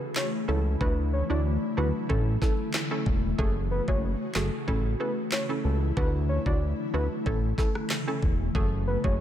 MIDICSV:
0, 0, Header, 1, 6, 480
1, 0, Start_track
1, 0, Key_signature, 3, "major"
1, 0, Tempo, 645161
1, 601, Time_signature, 4, 2, 24, 8
1, 6850, End_track
2, 0, Start_track
2, 0, Title_t, "Soft synth lead"
2, 0, Program_c, 0, 80
2, 120, Note_on_c, 0, 73, 83
2, 200, Note_off_c, 0, 73, 0
2, 360, Note_on_c, 0, 69, 70
2, 440, Note_off_c, 0, 69, 0
2, 602, Note_on_c, 0, 71, 114
2, 681, Note_off_c, 0, 71, 0
2, 842, Note_on_c, 0, 73, 84
2, 921, Note_off_c, 0, 73, 0
2, 968, Note_on_c, 0, 74, 83
2, 1039, Note_off_c, 0, 74, 0
2, 1320, Note_on_c, 0, 71, 84
2, 1400, Note_off_c, 0, 71, 0
2, 1559, Note_on_c, 0, 69, 87
2, 1639, Note_off_c, 0, 69, 0
2, 1800, Note_on_c, 0, 69, 79
2, 1880, Note_off_c, 0, 69, 0
2, 2520, Note_on_c, 0, 69, 113
2, 2600, Note_off_c, 0, 69, 0
2, 2762, Note_on_c, 0, 71, 81
2, 2841, Note_off_c, 0, 71, 0
2, 2889, Note_on_c, 0, 73, 79
2, 2959, Note_off_c, 0, 73, 0
2, 3243, Note_on_c, 0, 69, 78
2, 3322, Note_off_c, 0, 69, 0
2, 3720, Note_on_c, 0, 71, 79
2, 3800, Note_off_c, 0, 71, 0
2, 3961, Note_on_c, 0, 73, 80
2, 4041, Note_off_c, 0, 73, 0
2, 4200, Note_on_c, 0, 69, 68
2, 4280, Note_off_c, 0, 69, 0
2, 4439, Note_on_c, 0, 71, 116
2, 4520, Note_off_c, 0, 71, 0
2, 4680, Note_on_c, 0, 73, 87
2, 4760, Note_off_c, 0, 73, 0
2, 4808, Note_on_c, 0, 74, 83
2, 4879, Note_off_c, 0, 74, 0
2, 5162, Note_on_c, 0, 71, 86
2, 5241, Note_off_c, 0, 71, 0
2, 5401, Note_on_c, 0, 69, 82
2, 5481, Note_off_c, 0, 69, 0
2, 5641, Note_on_c, 0, 69, 79
2, 5721, Note_off_c, 0, 69, 0
2, 6362, Note_on_c, 0, 69, 109
2, 6442, Note_off_c, 0, 69, 0
2, 6602, Note_on_c, 0, 71, 81
2, 6681, Note_off_c, 0, 71, 0
2, 6727, Note_on_c, 0, 73, 76
2, 6798, Note_off_c, 0, 73, 0
2, 6850, End_track
3, 0, Start_track
3, 0, Title_t, "Synth pluck"
3, 0, Program_c, 1, 84
3, 358, Note_on_c, 1, 61, 75
3, 360, Note_on_c, 1, 64, 70
3, 362, Note_on_c, 1, 69, 85
3, 525, Note_off_c, 1, 61, 0
3, 526, Note_off_c, 1, 64, 0
3, 527, Note_off_c, 1, 69, 0
3, 600, Note_on_c, 1, 62, 96
3, 602, Note_on_c, 1, 64, 85
3, 604, Note_on_c, 1, 66, 102
3, 937, Note_off_c, 1, 62, 0
3, 938, Note_off_c, 1, 64, 0
3, 940, Note_off_c, 1, 66, 0
3, 965, Note_on_c, 1, 62, 78
3, 967, Note_on_c, 1, 64, 73
3, 970, Note_on_c, 1, 66, 88
3, 1293, Note_off_c, 1, 62, 0
3, 1294, Note_off_c, 1, 64, 0
3, 1295, Note_off_c, 1, 66, 0
3, 1318, Note_on_c, 1, 62, 75
3, 1321, Note_on_c, 1, 64, 71
3, 1323, Note_on_c, 1, 66, 84
3, 1542, Note_off_c, 1, 62, 0
3, 1543, Note_off_c, 1, 64, 0
3, 1544, Note_off_c, 1, 66, 0
3, 1557, Note_on_c, 1, 61, 94
3, 1558, Note_on_c, 1, 64, 85
3, 1562, Note_on_c, 1, 69, 101
3, 1781, Note_off_c, 1, 61, 0
3, 1782, Note_off_c, 1, 64, 0
3, 1784, Note_off_c, 1, 69, 0
3, 1798, Note_on_c, 1, 61, 73
3, 1800, Note_on_c, 1, 64, 70
3, 1802, Note_on_c, 1, 69, 81
3, 1965, Note_off_c, 1, 61, 0
3, 1966, Note_off_c, 1, 64, 0
3, 1967, Note_off_c, 1, 69, 0
3, 2164, Note_on_c, 1, 61, 77
3, 2167, Note_on_c, 1, 64, 72
3, 2168, Note_on_c, 1, 69, 88
3, 2322, Note_off_c, 1, 61, 0
3, 2323, Note_off_c, 1, 64, 0
3, 2324, Note_off_c, 1, 69, 0
3, 2517, Note_on_c, 1, 57, 96
3, 2520, Note_on_c, 1, 66, 85
3, 2522, Note_on_c, 1, 68, 105
3, 2856, Note_off_c, 1, 57, 0
3, 2857, Note_off_c, 1, 66, 0
3, 2859, Note_off_c, 1, 68, 0
3, 2886, Note_on_c, 1, 57, 76
3, 2888, Note_on_c, 1, 66, 70
3, 2889, Note_on_c, 1, 68, 84
3, 3213, Note_off_c, 1, 57, 0
3, 3214, Note_off_c, 1, 66, 0
3, 3215, Note_off_c, 1, 68, 0
3, 3240, Note_on_c, 1, 57, 78
3, 3242, Note_on_c, 1, 66, 72
3, 3244, Note_on_c, 1, 68, 86
3, 3463, Note_off_c, 1, 57, 0
3, 3464, Note_off_c, 1, 66, 0
3, 3464, Note_off_c, 1, 68, 0
3, 3479, Note_on_c, 1, 61, 93
3, 3481, Note_on_c, 1, 64, 85
3, 3483, Note_on_c, 1, 69, 106
3, 3702, Note_off_c, 1, 61, 0
3, 3703, Note_off_c, 1, 64, 0
3, 3704, Note_off_c, 1, 69, 0
3, 3719, Note_on_c, 1, 61, 74
3, 3721, Note_on_c, 1, 64, 66
3, 3724, Note_on_c, 1, 69, 78
3, 3886, Note_off_c, 1, 61, 0
3, 3887, Note_off_c, 1, 64, 0
3, 3888, Note_off_c, 1, 69, 0
3, 4086, Note_on_c, 1, 61, 81
3, 4089, Note_on_c, 1, 64, 73
3, 4091, Note_on_c, 1, 69, 85
3, 4243, Note_off_c, 1, 61, 0
3, 4245, Note_off_c, 1, 64, 0
3, 4246, Note_off_c, 1, 69, 0
3, 4440, Note_on_c, 1, 62, 97
3, 4441, Note_on_c, 1, 64, 86
3, 4444, Note_on_c, 1, 66, 103
3, 4777, Note_off_c, 1, 62, 0
3, 4778, Note_off_c, 1, 64, 0
3, 4779, Note_off_c, 1, 66, 0
3, 4807, Note_on_c, 1, 62, 79
3, 4809, Note_on_c, 1, 64, 72
3, 4811, Note_on_c, 1, 66, 87
3, 5133, Note_off_c, 1, 62, 0
3, 5134, Note_off_c, 1, 64, 0
3, 5135, Note_off_c, 1, 66, 0
3, 5161, Note_on_c, 1, 62, 76
3, 5163, Note_on_c, 1, 64, 74
3, 5166, Note_on_c, 1, 66, 82
3, 5383, Note_off_c, 1, 62, 0
3, 5384, Note_off_c, 1, 64, 0
3, 5386, Note_off_c, 1, 66, 0
3, 5402, Note_on_c, 1, 61, 90
3, 5404, Note_on_c, 1, 64, 86
3, 5406, Note_on_c, 1, 69, 102
3, 5624, Note_off_c, 1, 61, 0
3, 5625, Note_off_c, 1, 64, 0
3, 5626, Note_off_c, 1, 69, 0
3, 5641, Note_on_c, 1, 61, 72
3, 5643, Note_on_c, 1, 64, 65
3, 5646, Note_on_c, 1, 69, 79
3, 5807, Note_off_c, 1, 61, 0
3, 5808, Note_off_c, 1, 64, 0
3, 5809, Note_off_c, 1, 69, 0
3, 6007, Note_on_c, 1, 61, 76
3, 6010, Note_on_c, 1, 64, 72
3, 6012, Note_on_c, 1, 69, 87
3, 6164, Note_off_c, 1, 61, 0
3, 6165, Note_off_c, 1, 64, 0
3, 6166, Note_off_c, 1, 69, 0
3, 6360, Note_on_c, 1, 57, 90
3, 6362, Note_on_c, 1, 66, 86
3, 6364, Note_on_c, 1, 68, 105
3, 6697, Note_off_c, 1, 57, 0
3, 6698, Note_off_c, 1, 66, 0
3, 6699, Note_off_c, 1, 68, 0
3, 6725, Note_on_c, 1, 57, 78
3, 6727, Note_on_c, 1, 66, 70
3, 6729, Note_on_c, 1, 68, 81
3, 6850, Note_off_c, 1, 57, 0
3, 6850, Note_off_c, 1, 66, 0
3, 6850, Note_off_c, 1, 68, 0
3, 6850, End_track
4, 0, Start_track
4, 0, Title_t, "Ambient pad"
4, 0, Program_c, 2, 92
4, 0, Note_on_c, 2, 49, 82
4, 0, Note_on_c, 2, 52, 71
4, 0, Note_on_c, 2, 57, 77
4, 0, Note_on_c, 2, 64, 90
4, 582, Note_off_c, 2, 49, 0
4, 592, Note_off_c, 2, 52, 0
4, 601, Note_on_c, 2, 50, 78
4, 602, Note_on_c, 2, 54, 70
4, 1552, Note_off_c, 2, 50, 0
4, 1552, Note_off_c, 2, 54, 0
4, 1561, Note_on_c, 2, 49, 83
4, 1563, Note_on_c, 2, 52, 74
4, 2492, Note_off_c, 2, 64, 0
4, 2513, Note_off_c, 2, 52, 0
4, 2519, Note_on_c, 2, 66, 89
4, 2519, Note_on_c, 2, 68, 72
4, 3471, Note_off_c, 2, 66, 0
4, 3471, Note_off_c, 2, 68, 0
4, 3482, Note_on_c, 2, 52, 72
4, 3482, Note_on_c, 2, 64, 93
4, 4411, Note_off_c, 2, 57, 0
4, 4412, Note_off_c, 2, 49, 0
4, 4432, Note_off_c, 2, 52, 0
4, 4442, Note_on_c, 2, 50, 75
4, 4442, Note_on_c, 2, 54, 70
4, 4442, Note_on_c, 2, 57, 76
4, 5392, Note_off_c, 2, 50, 0
4, 5392, Note_off_c, 2, 54, 0
4, 5400, Note_on_c, 2, 49, 80
4, 5401, Note_on_c, 2, 52, 73
4, 6333, Note_off_c, 2, 64, 0
4, 6343, Note_off_c, 2, 57, 0
4, 6352, Note_off_c, 2, 52, 0
4, 6364, Note_on_c, 2, 57, 74
4, 6364, Note_on_c, 2, 66, 87
4, 6364, Note_on_c, 2, 68, 72
4, 6850, Note_off_c, 2, 49, 0
4, 6850, Note_off_c, 2, 57, 0
4, 6850, Note_off_c, 2, 66, 0
4, 6850, Note_off_c, 2, 68, 0
4, 6850, End_track
5, 0, Start_track
5, 0, Title_t, "Analog synth bass"
5, 0, Program_c, 3, 38
5, 361, Note_on_c, 3, 37, 90
5, 565, Note_off_c, 3, 37, 0
5, 601, Note_on_c, 3, 38, 112
5, 913, Note_off_c, 3, 38, 0
5, 968, Note_on_c, 3, 38, 85
5, 1172, Note_off_c, 3, 38, 0
5, 1320, Note_on_c, 3, 38, 88
5, 1429, Note_off_c, 3, 38, 0
5, 1561, Note_on_c, 3, 33, 111
5, 1765, Note_off_c, 3, 33, 0
5, 2279, Note_on_c, 3, 28, 96
5, 2484, Note_off_c, 3, 28, 0
5, 2521, Note_on_c, 3, 30, 106
5, 2833, Note_off_c, 3, 30, 0
5, 2886, Note_on_c, 3, 30, 86
5, 3091, Note_off_c, 3, 30, 0
5, 3240, Note_on_c, 3, 30, 90
5, 3348, Note_off_c, 3, 30, 0
5, 3481, Note_on_c, 3, 33, 106
5, 3685, Note_off_c, 3, 33, 0
5, 4200, Note_on_c, 3, 37, 91
5, 4405, Note_off_c, 3, 37, 0
5, 4441, Note_on_c, 3, 38, 112
5, 4753, Note_off_c, 3, 38, 0
5, 4806, Note_on_c, 3, 38, 84
5, 5011, Note_off_c, 3, 38, 0
5, 5162, Note_on_c, 3, 38, 88
5, 5270, Note_off_c, 3, 38, 0
5, 5402, Note_on_c, 3, 33, 114
5, 5606, Note_off_c, 3, 33, 0
5, 6120, Note_on_c, 3, 28, 101
5, 6324, Note_off_c, 3, 28, 0
5, 6361, Note_on_c, 3, 30, 107
5, 6673, Note_off_c, 3, 30, 0
5, 6727, Note_on_c, 3, 30, 91
5, 6850, Note_off_c, 3, 30, 0
5, 6850, End_track
6, 0, Start_track
6, 0, Title_t, "Drums"
6, 118, Note_on_c, 9, 39, 87
6, 120, Note_on_c, 9, 38, 106
6, 192, Note_off_c, 9, 39, 0
6, 194, Note_off_c, 9, 38, 0
6, 601, Note_on_c, 9, 36, 114
6, 675, Note_off_c, 9, 36, 0
6, 1561, Note_on_c, 9, 36, 81
6, 1635, Note_off_c, 9, 36, 0
6, 1798, Note_on_c, 9, 36, 95
6, 1801, Note_on_c, 9, 38, 64
6, 1873, Note_off_c, 9, 36, 0
6, 1876, Note_off_c, 9, 38, 0
6, 2038, Note_on_c, 9, 39, 84
6, 2040, Note_on_c, 9, 38, 111
6, 2112, Note_off_c, 9, 39, 0
6, 2114, Note_off_c, 9, 38, 0
6, 2279, Note_on_c, 9, 36, 91
6, 2353, Note_off_c, 9, 36, 0
6, 2520, Note_on_c, 9, 36, 116
6, 2594, Note_off_c, 9, 36, 0
6, 2886, Note_on_c, 9, 36, 86
6, 2960, Note_off_c, 9, 36, 0
6, 3236, Note_on_c, 9, 39, 78
6, 3238, Note_on_c, 9, 38, 96
6, 3310, Note_off_c, 9, 39, 0
6, 3312, Note_off_c, 9, 38, 0
6, 3481, Note_on_c, 9, 36, 83
6, 3555, Note_off_c, 9, 36, 0
6, 3958, Note_on_c, 9, 39, 90
6, 3960, Note_on_c, 9, 38, 111
6, 4032, Note_off_c, 9, 39, 0
6, 4034, Note_off_c, 9, 38, 0
6, 4441, Note_on_c, 9, 36, 120
6, 4515, Note_off_c, 9, 36, 0
6, 4807, Note_on_c, 9, 36, 90
6, 4881, Note_off_c, 9, 36, 0
6, 5402, Note_on_c, 9, 36, 81
6, 5476, Note_off_c, 9, 36, 0
6, 5639, Note_on_c, 9, 36, 91
6, 5642, Note_on_c, 9, 38, 66
6, 5713, Note_off_c, 9, 36, 0
6, 5717, Note_off_c, 9, 38, 0
6, 5769, Note_on_c, 9, 37, 88
6, 5843, Note_off_c, 9, 37, 0
6, 5878, Note_on_c, 9, 39, 88
6, 5880, Note_on_c, 9, 38, 109
6, 5953, Note_off_c, 9, 39, 0
6, 5955, Note_off_c, 9, 38, 0
6, 6120, Note_on_c, 9, 36, 89
6, 6194, Note_off_c, 9, 36, 0
6, 6361, Note_on_c, 9, 36, 120
6, 6435, Note_off_c, 9, 36, 0
6, 6727, Note_on_c, 9, 36, 86
6, 6801, Note_off_c, 9, 36, 0
6, 6850, End_track
0, 0, End_of_file